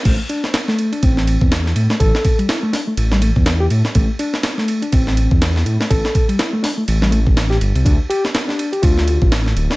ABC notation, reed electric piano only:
X:1
M:4/4
L:1/16
Q:"Swing 16ths" 1/4=123
K:Am
V:1 name="Reed electric piano"
A, z D z2 A,2 D C4 z3 A, | A3 G, E A, D A, z G, A, z2 G z2 | A, z D z2 A,2 D C4 z3 A, | A3 G, E A, D A, z G, A, z2 G z2 |
D z G z2 D2 G F4 z3 D |]